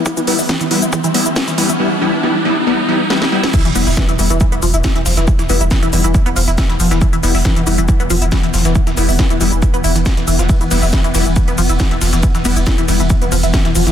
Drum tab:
CC |----------------|----------------|x---------------|----------------|
RD |----------------|----------------|----------------|----------------|
HH |xxooxxoxxxoxxxox|----------------|xxoo-xoxxxoxxxox|xxoxxxoxxxoxxxox|
SH |xx-xxx-xxx-xxx-x|----------------|xxxxxxxxxxxxx-xx|xxxxxxxxxxxxx-xx|
SD |----o-------o---|------------oo-o|---oo-------o-oo|-o--o-------oo-o|
BD |o---o---o---o---|----------------|o---o---o---o---|o---o---o---o---|

CC |----------------|----------------|----------------|----------------|
RD |----------------|----------------|x-x-x-x-x-x-x-x-|x-x-x-x-x-x-x-x-|
HH |xxoo-xoxxxoxxxox|xxoo-xoxxxoxxxox|xxoo-xoxxxoxxxox|xxoxxxoxxxoxxxox|
SH |xxxxxxxxxxxxx-xx|xxxxxxxxxxxxx-xx|xxxxxxxxxxxxx-xx|xxxxxxxxxxxxx-xx|
SD |---oo-------o-oo|-o--o-------oo-o|---oo-------o-oo|-o--o-------oo-o|
BD |o---o---o---o---|o---o---o---o---|o---o---o---o---|o---o---o---o---|